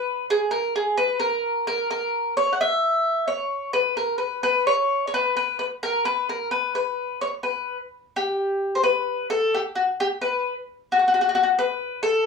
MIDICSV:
0, 0, Header, 1, 2, 480
1, 0, Start_track
1, 0, Tempo, 462963
1, 992, Time_signature, 3, 2, 24, 8
1, 9635, Tempo, 454545
1, 12770, End_track
2, 0, Start_track
2, 0, Title_t, "Mandolin"
2, 0, Program_c, 0, 25
2, 0, Note_on_c, 0, 71, 78
2, 260, Note_off_c, 0, 71, 0
2, 314, Note_on_c, 0, 68, 86
2, 513, Note_off_c, 0, 68, 0
2, 529, Note_on_c, 0, 70, 82
2, 752, Note_off_c, 0, 70, 0
2, 784, Note_on_c, 0, 68, 71
2, 988, Note_off_c, 0, 68, 0
2, 1011, Note_on_c, 0, 71, 93
2, 1233, Note_off_c, 0, 71, 0
2, 1239, Note_on_c, 0, 70, 76
2, 1721, Note_off_c, 0, 70, 0
2, 1733, Note_on_c, 0, 70, 86
2, 1945, Note_off_c, 0, 70, 0
2, 1975, Note_on_c, 0, 70, 77
2, 2418, Note_off_c, 0, 70, 0
2, 2456, Note_on_c, 0, 73, 88
2, 2612, Note_off_c, 0, 73, 0
2, 2619, Note_on_c, 0, 78, 65
2, 2695, Note_off_c, 0, 78, 0
2, 2703, Note_on_c, 0, 76, 83
2, 3370, Note_off_c, 0, 76, 0
2, 3396, Note_on_c, 0, 73, 76
2, 3844, Note_off_c, 0, 73, 0
2, 3870, Note_on_c, 0, 71, 95
2, 4106, Note_off_c, 0, 71, 0
2, 4114, Note_on_c, 0, 70, 72
2, 4329, Note_off_c, 0, 70, 0
2, 4333, Note_on_c, 0, 71, 64
2, 4576, Note_off_c, 0, 71, 0
2, 4595, Note_on_c, 0, 71, 93
2, 4836, Note_off_c, 0, 71, 0
2, 4840, Note_on_c, 0, 73, 93
2, 5249, Note_off_c, 0, 73, 0
2, 5262, Note_on_c, 0, 73, 68
2, 5315, Note_off_c, 0, 73, 0
2, 5328, Note_on_c, 0, 71, 92
2, 5550, Note_off_c, 0, 71, 0
2, 5563, Note_on_c, 0, 71, 83
2, 5775, Note_off_c, 0, 71, 0
2, 5796, Note_on_c, 0, 71, 73
2, 5862, Note_off_c, 0, 71, 0
2, 6044, Note_on_c, 0, 70, 91
2, 6254, Note_off_c, 0, 70, 0
2, 6275, Note_on_c, 0, 71, 92
2, 6521, Note_off_c, 0, 71, 0
2, 6525, Note_on_c, 0, 70, 78
2, 6734, Note_off_c, 0, 70, 0
2, 6752, Note_on_c, 0, 71, 83
2, 6987, Note_off_c, 0, 71, 0
2, 6999, Note_on_c, 0, 71, 76
2, 7475, Note_off_c, 0, 71, 0
2, 7479, Note_on_c, 0, 73, 81
2, 7542, Note_off_c, 0, 73, 0
2, 7705, Note_on_c, 0, 71, 69
2, 8049, Note_off_c, 0, 71, 0
2, 8464, Note_on_c, 0, 67, 81
2, 9075, Note_on_c, 0, 72, 74
2, 9113, Note_off_c, 0, 67, 0
2, 9150, Note_off_c, 0, 72, 0
2, 9160, Note_on_c, 0, 71, 90
2, 9604, Note_off_c, 0, 71, 0
2, 9643, Note_on_c, 0, 69, 92
2, 9899, Note_off_c, 0, 69, 0
2, 9901, Note_on_c, 0, 67, 77
2, 9962, Note_off_c, 0, 67, 0
2, 10122, Note_on_c, 0, 66, 72
2, 10189, Note_off_c, 0, 66, 0
2, 10384, Note_on_c, 0, 67, 92
2, 10444, Note_off_c, 0, 67, 0
2, 10609, Note_on_c, 0, 71, 84
2, 10943, Note_off_c, 0, 71, 0
2, 11353, Note_on_c, 0, 66, 74
2, 11410, Note_off_c, 0, 66, 0
2, 11429, Note_on_c, 0, 66, 55
2, 11486, Note_off_c, 0, 66, 0
2, 11519, Note_on_c, 0, 66, 69
2, 11569, Note_off_c, 0, 66, 0
2, 11586, Note_on_c, 0, 66, 68
2, 11646, Note_off_c, 0, 66, 0
2, 11661, Note_on_c, 0, 66, 70
2, 11723, Note_off_c, 0, 66, 0
2, 11743, Note_on_c, 0, 66, 64
2, 11794, Note_off_c, 0, 66, 0
2, 11806, Note_on_c, 0, 66, 81
2, 11872, Note_off_c, 0, 66, 0
2, 11896, Note_on_c, 0, 66, 64
2, 11955, Note_off_c, 0, 66, 0
2, 12057, Note_on_c, 0, 71, 97
2, 12493, Note_off_c, 0, 71, 0
2, 12523, Note_on_c, 0, 69, 106
2, 12751, Note_off_c, 0, 69, 0
2, 12770, End_track
0, 0, End_of_file